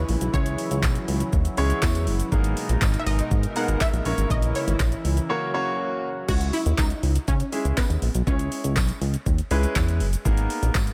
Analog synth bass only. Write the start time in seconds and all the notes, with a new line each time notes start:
0.09 A#1
0.21 B1
0.34 C#2
0.71 C#2
0.83 B1
1.08 C#2
1.33 D#2
1.58 C#2
1.83 E2
2.07 F#1
2.32 G#1
2.69 A#1
2.82 G#1
3.06 G#1
3.31 G#2
3.68 G#1
3.93 A#1
4.05 A#1
4.18 G#1
4.30 A#1
4.67 G#1
4.80 A#1
5.05 C#2
6.29 C#2
6.66 D#2
6.78 C#2
7.03 C#2
7.28 C#3
7.65 C#2
7.90 D#2
8.02 A#1
8.15 B1
8.27 C#2
8.64 C#2
8.77 B1
9.01 C#2
9.26 D#2
9.51 C#2
9.76 E2
10.00 F#1
10.25 G#1
10.62 A#1
10.75 G#1